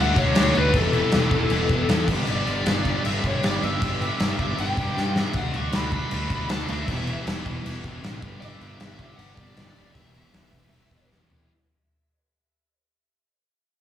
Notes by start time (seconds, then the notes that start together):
Already playing: D3
0.00 D2 F#3 A3 D4 F#4 F#5
0.16 D2 D3 F#3 A3 D4 F#4 C#5, kick, crash
0.35 D2 D3 F#3 A3 D4 F#4 C#5, snare, crash
0.55 D2 D3 F#3 A3 D4 F#4 B4, crash
0.73 E1 E2 B2 E3 B3 E4 G4 A4, kick, crash
0.92 E2 B2 E3 B3 E4 G4, crash
1.11 E1 E2 B2 E3 B3 E4 G4, snare, crash
1.31 E1 E2 B2 E3 B3 E4 G4, kick, crash
1.49 E1 E2 B2 E3 B3 E4 G4, crash
1.69 E1 E2 B2 E3 B3 E4 G4, kick, crash
1.89 E2 B2 E3 B3 E4 G4, snare, crash
2.08 G1 G2 D3 G3 B3 D4 G4, kick, crash
2.26 G1 G2 D3 G3 B3 D4 G4 D5, crash
2.45 G1 G2 D3 G3 B3 D4 G4, crash
2.65 G1 G2 D3 G3 B3 D4 G4, snare, crash
2.85 G2 D3 G3 B3 D4 G4, kick, crash
3.04 G1 G2 D3 G3 B3 D4 G4 E5, crash
3.24 G1 G2 D3 G3 B3 D4 G4 C#5, kick, crash
3.43 G1 G2 D3 G3 B3 D4 G4 D5, snare, crash
3.62 G1 G2 D3 G3 B3 D4 G4 E5, crash
3.81 G1 G2 D3 G3 B3 D4 G4, kick, crash
4.01 G2 D3 G3 B3 D4 G4, crash
4.19 G1 G2 D3 G3 B3 D4, snare, crash
4.23 G4
4.38 G1 G2 D3 G3 B3 D4 G4 E5, kick, crash
4.58 G1 G2 D3 G3 B3 D4 G4 G5, crash
4.77 G1 G2 D3 G3 B3 D4 G4, kick, crash
4.97 G2 D3 G3 B3 D4 G4, snare
5.16 G2 D3 G3 B3 D4 G4 E5, snare
5.33 D2 D3 F#3 A3 D4 F#5, kick, crash
5.37 D4 F#4
5.54 D2 D3 F#3 A3 D4 F#4 C#6, crash
5.72 D2 D3 F#3 A3 D4 F#4 B5, snare, crash
5.92 D3 F#3 A3 D4 B5, kick, crash
5.96 F#4
6.10 D2 D3 F#3 A3 D4 F#4, crash
6.29 D2 D3 F#3 A3 D4, kick, crash
6.33 A3 D4 F#4
6.49 D2 D3 F#3 A3 D4 F#4 A5, snare, crash
6.60 snare
6.68 D2 D3 F#3 A3 D4 E5, crash
6.73 F#4
6.87 E1 E2 B2 E3 B3 E4 G4, kick, crash
7.07 E2 B2 E3 B3 E4 G4, crash
7.25 E1 E2 B2 E3 B3 E4 G4, snare, crash
7.45 E1 E2 B2 E3 B3 E4 G4, kick, crash
7.65 E1 E2 B2 E3 B3 E4 G4, crash
7.83 E1 E2 B2 E3 B3 E4 G4, kick, crash
8.02 A1 E2 B2 E3 B3 E4 G4, snare, crash
8.22 G1 G2 D3 G3 B3 D4 G4, kick, crash
8.40 G1 G2 D3 G3 B3 D4 E5, crash
8.44 G4
8.61 G1 G2 D3 G3 B3 D4 G4, crash
8.80 G1 G2 D3 G3 B3 D4 G4, snare, crash
8.99 G2 D3 G3 B3 D4 G4, kick, crash
9.16 G1 G2 D3 G3 B3 D4 F#5, crash
9.20 G4
9.35 G1 G2 D3 G3 B3 D5, kick, crash
9.39 D4 G4
9.56 G1 G2 D3 G3 B3 D4 G4, snare, crash
9.68 snare
9.74 F#1 G2 D3 G3 B3 D4 G4, crash
9.93 E1 E2 B2 E3 B3 E4 E5, kick, crash
9.98 G4
10.14 E2 B2 E3 B3 E4 G4, crash
10.33 E1 E2 B2 E3 B3 E4 G4, snare, crash
10.52 E1 E2 B2 E3 B3 E4 G4, kick, crash
10.72 E1 E2 B2 E3 B3 E4 G4, crash
10.91 E1 E2 B2 E3 B3 E4 G4, kick, crash
11.11 E2 B2 E3 B3 E4 G4, snare
11.29 E2 B2 E3 B3 E4 G4, floor tom